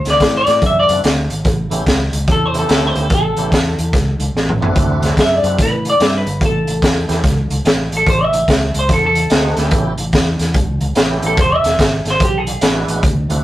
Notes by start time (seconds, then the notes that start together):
0.05 D2, snare, closed hi-hat
0.10 D5
0.20 A2, kick, snare, closed hi-hat
0.37 D5
0.47 A2, snare, closed hi-hat
0.62 F#2, kick, closed hi-hat
0.66 E5
0.79 D5
0.88 F#2 A3 C4 D4 E4 F#4, closed hi-hat
1.04 D2, snare, closed hi-hat
1.30 G#1, closed hi-hat
1.45 A1, kick, closed hi-hat
1.70 A1 A3 B3 C#4 E4 G4, closed hi-hat
1.86 C#2, kick, snare, closed hi-hat
2.13 C#2, closed hi-hat
2.28 E2, kick, closed hi-hat
2.32 A4
2.45 C5
2.54 A3 B3 C#4 E4 G4, closed hi-hat
2.59 A4
2.69 D2 A4, snare, closed hi-hat
2.87 C5
2.95 D2, closed hi-hat
3.02 A4
3.10 A1, kick, closed hi-hat
3.14 A4
3.37 A1 A3 B3 C#4 E4 G4, closed hi-hat
3.52 E2, kick, snare, closed hi-hat
3.78 E2, closed hi-hat
3.93 C#2, kick, snare, closed hi-hat
4.19 C#2, closed hi-hat
4.37 snare
4.49 mid tom
4.60 A1 A3 C4 D4 E4 F#4, floor tom
4.76 D2, kick, closed hi-hat
5.02 D2, snare, closed hi-hat
5.17 F#2 E5, kick, snare, closed hi-hat
5.35 D5
5.43 F#2 A3 C4 D4 E4 F#4, closed hi-hat
5.58 A2 B4, kick, snare, closed hi-hat
5.85 closed hi-hat
5.90 D5
6.00 G2 E5, snare, closed hi-hat
6.17 B4
6.26 G1, closed hi-hat
6.41 A1, kick, closed hi-hat
6.45 A4
6.67 A1, closed hi-hat
6.82 E2, kick, snare, closed hi-hat
7.07 E2 A3 B3 C#4 E4 G4, snare, closed hi-hat
7.24 C#2, kick, snare, closed hi-hat
7.50 C#2, closed hi-hat
7.65 A1, snare, closed hi-hat
7.92 A1, closed hi-hat
7.97 A4
8.07 A1 C5, kick, closed hi-hat
8.23 E5
8.32 A1, closed hi-hat
8.48 C#2, kick, snare, closed hi-hat
8.74 C#2, closed hi-hat
8.79 C5
8.89 E2, kick, snare, closed hi-hat
8.93 A4
9.06 A4
9.15 closed hi-hat
9.30 D2 G#3 A#3 C4 D#4 F#4, snare, closed hi-hat
9.56 D2 A3 B3 C#4 E4 G4, snare, closed hi-hat
9.71 A1, kick, closed hi-hat
9.98 A1, closed hi-hat
10.13 E2, kick, snare, closed hi-hat
10.39 E2, snare, closed hi-hat
10.54 C#2, kick, closed hi-hat
10.81 C#2, closed hi-hat
10.95 A3 B3 C#4 E4 G4, snare, closed hi-hat
11.22 A1, closed hi-hat
11.27 A4
11.37 E1 C5, kick, closed hi-hat
11.55 E5
11.64 E1, snare, closed hi-hat
11.79 G#1, kick, snare, closed hi-hat
12.05 G#1, snare, closed hi-hat
12.11 C5
12.20 B1, kick, closed hi-hat
12.24 G4
12.38 G#4
12.47 closed hi-hat
12.61 A1 G#3 B3 D4 E4 F#4, snare, closed hi-hat
12.88 A1, closed hi-hat
13.03 D2, kick, closed hi-hat
13.29 D2 A3 C4 D4 E4 F#4, closed hi-hat